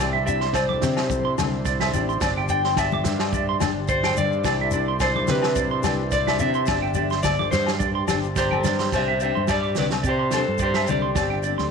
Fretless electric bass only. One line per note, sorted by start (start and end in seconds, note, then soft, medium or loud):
0.00 0.78 C2 loud
0.83 1.35 C3 medium
1.38 1.90 C2 medium
1.95 2.20 A1 loud
2.21 3.01 G1 loud
3.05 3.57 G2 loud
3.62 4.14 G1 medium
4.17 4.43 G2 loud
4.45 5.25 C2 loud
5.30 5.82 C3 loud
5.84 6.36 C2 medium
6.41 6.67 C3 loud
6.68 7.48 G1 loud
7.52 8.05 G2 loud
8.09 8.61 G1 medium
8.64 8.89 G2 loud
8.93 9.32 C2 medium
9.36 9.73 G2 medium
9.77 10.02 C2 medium
10.04 10.43 C3 medium
10.48 10.85 G2 medium
10.89 11.14 C2 medium
11.15 11.55 G1 medium
11.59 11.71 D2 medium